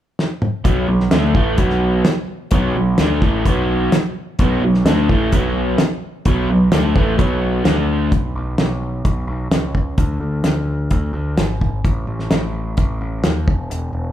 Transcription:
0.19 snare medium
0.42 mid tom medium
0.64 0.87 B1 medium
0.64 0.87 B2 medium
0.64 0.87 F#3 medium
0.64 0.88 B3 loud
0.64 kick loud
0.64 closed hi-hat medium
0.88 1.10 B1 medium
0.88 1.07 B2 medium
0.88 1.07 F#3 medium
1.00 snare soft
1.11 1.33 D2 medium
1.11 1.35 D3 medium
1.11 1.35 A3 loud
1.11 1.35 D4 loud
1.11 snare loud
1.11 closed hi-hat medium
1.35 1.57 A1 medium
1.35 1.58 A2 medium
1.35 1.59 E3 medium
1.35 1.59 A3 medium
1.35 kick medium
1.58 2.02 B1 medium
1.58 2.04 B2 medium
1.58 2.05 F#3 medium
1.58 2.05 B3 medium
1.58 kick medium
1.58 closed hi-hat medium
1.70 snare soft
2.05 muted overdriven electric guitar stroke medium
2.05 snare loud
2.05 closed hi-hat medium
2.51 2.74 B1 medium
2.51 2.75 B2 medium
2.51 2.75 F#3 loud
2.51 2.75 B3 loud
2.51 kick loud
2.51 closed hi-hat medium
2.75 2.97 B1 medium
2.75 2.94 B2 medium
2.75 2.95 F#3 medium
2.98 3.21 D2 medium
2.98 3.21 D3 medium
2.98 3.22 A3 loud
2.98 3.22 D4 loud
2.98 snare loud
2.98 closed hi-hat medium
3.21 3.43 A1 medium
3.21 3.45 A2 medium
3.21 3.45 E3 medium
3.21 3.45 A3 medium
3.21 kick loud
3.21 snare soft
3.45 3.89 B1 medium
3.45 3.92 B2 medium
3.45 3.92 F#3 medium
3.45 3.93 B3 medium
3.45 kick medium
3.45 closed hi-hat medium
3.92 muted overdriven electric guitar stroke medium
3.92 snare loud
3.92 closed hi-hat medium
4.39 4.61 B1 medium
4.39 4.62 B2 medium
4.39 4.62 F#3 medium
4.39 4.62 B3 loud
4.39 kick loud
4.39 closed hi-hat medium
4.62 4.84 B1 medium
4.62 4.82 B2 medium
4.62 4.82 F#3 medium
4.74 snare soft
4.85 5.07 D2 loud
4.85 5.09 D3 loud
4.85 5.09 A3 medium
4.85 5.09 D4 loud
4.85 snare loud
4.85 closed hi-hat medium
5.09 5.31 A1 medium
5.09 5.32 A2 medium
5.09 5.32 E3 medium
5.09 5.33 A3 loud
5.09 kick medium
5.32 5.76 B1 medium
5.32 5.79 B2 medium
5.32 5.79 F#3 medium
5.32 5.79 B3 loud
5.32 kick medium
5.32 closed hi-hat medium
5.78 muted overdriven electric guitar stroke medium
5.78 snare loud
5.78 closed hi-hat medium
6.25 6.47 B1 medium
6.25 6.49 B2 medium
6.25 6.49 F#3 loud
6.25 6.49 B3 loud
6.25 kick loud
6.25 closed hi-hat medium
6.49 6.70 B1 medium
6.49 6.68 B2 medium
6.49 6.68 F#3 medium
6.72 6.94 D2 medium
6.72 6.95 D3 medium
6.72 6.95 A3 medium
6.72 6.95 D4 medium
6.72 snare loud
6.72 closed hi-hat medium
6.96 7.17 A1 medium
6.96 7.18 A2 medium
6.96 7.18 E3 medium
6.96 7.18 A3 medium
6.96 kick medium
7.18 7.62 B1 medium
7.18 7.64 B2 medium
7.18 7.64 F#3 medium
7.18 7.64 B3 medium
7.18 kick medium
7.18 closed hi-hat medium
7.65 8.08 D2 medium
7.65 8.11 D3 medium
7.65 8.11 A3 medium
7.65 8.11 D4 medium
7.65 snare loud
7.65 closed hi-hat medium
8.11 8.33 B1 medium
8.11 kick loud
8.11 closed hi-hat medium
8.35 8.57 B1 medium
8.58 9.02 B1 medium
8.58 snare loud
8.58 closed hi-hat medium
9.05 9.26 B1 medium
9.05 kick medium
9.05 closed hi-hat medium
9.27 9.49 B1 medium
9.51 9.95 C#2 medium
9.51 snare loud
9.51 closed hi-hat medium
9.75 kick medium
9.98 10.20 D2 medium
9.98 kick loud
9.98 closed hi-hat medium
10.20 10.42 D2 medium
10.44 10.88 D2 medium
10.44 snare loud
10.44 closed hi-hat medium
10.91 11.12 D2 medium
10.91 kick medium
10.91 closed hi-hat medium
11.13 11.36 D2 medium
11.37 11.81 G#1 medium
11.37 snare loud
11.37 closed hi-hat medium
11.61 kick medium
11.85 12.06 A1 medium
11.85 kick loud
11.85 closed hi-hat medium
12.07 12.29 A1 medium
12.19 snare soft
12.30 12.74 A1 medium
12.30 snare loud
12.30 closed hi-hat medium
12.77 12.99 A1 medium
12.77 kick medium
12.77 closed hi-hat medium
13.01 13.23 A1 medium
13.24 13.46 D#2 medium
13.24 snare loud
13.24 closed hi-hat medium
13.48 13.69 E1 medium
13.48 kick medium
13.70 13.92 E1 medium
13.70 closed hi-hat medium
13.93 14.12 E1 medium

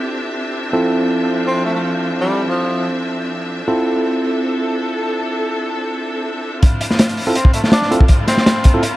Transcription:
0.00 0.71 C4 medium
0.00 6.59 C4 medium
0.00 6.59 D4 medium
0.00 0.71 E4 medium
0.00 0.71 F4 medium
0.00 0.72 G4 medium
0.00 0.71 A4 medium
0.00 6.59 E5 medium
0.73 3.67 F3 medium
0.73 3.66 C4 medium
0.73 3.66 E4 medium
0.73 3.66 F4 medium
0.73 3.66 A4 medium
1.47 1.64 C4 medium
1.65 1.71 A3 medium
1.75 1.81 A3 medium
2.21 2.43 G3 medium
2.49 2.86 F3 medium
3.68 6.60 C4 medium
3.68 6.60 E4 medium
3.68 6.60 F4 medium
3.68 6.60 A4 medium
3.68 6.61 A4 medium
6.62 8.97 C4 medium
6.62 8.97 D4 medium
6.62 8.97 E4 medium
6.62 8.97 F4 medium
6.62 kick loud
6.62 closed hi-hat medium
6.62 riser medium
6.81 closed hi-hat medium
6.90 snare soft
6.99 snare loud
6.99 closed hi-hat medium
7.09 closed hi-hat soft
7.17 open hi-hat medium
7.27 7.34 C4 medium
7.27 7.34 E4 medium
7.27 7.34 F4 medium
7.27 7.34 A4 medium
7.35 7.53 C4 medium
7.35 closed hi-hat medium
7.45 kick medium
7.54 7.60 A3 medium
7.54 closed hi-hat medium
7.64 7.70 A3 medium
7.64 snare soft
7.72 7.95 D4 medium
7.72 snare loud
7.72 closed hi-hat medium
7.82 snare soft
7.91 8.03 C4 medium
7.91 8.03 E4 medium
7.91 8.03 F4 medium
7.91 8.03 A4 medium
7.91 closed hi-hat medium
8.01 kick medium
8.08 kick loud
8.08 closed hi-hat medium
8.27 8.79 C4 medium
8.27 snare soft
8.27 closed hi-hat medium
8.37 snare medium
8.46 snare loud
8.46 closed hi-hat medium
8.64 kick medium
8.64 closed hi-hat medium
8.74 8.81 C4 medium
8.74 8.81 E4 medium
8.74 8.81 F4 medium
8.74 8.81 A4 medium
8.83 closed hi-hat medium

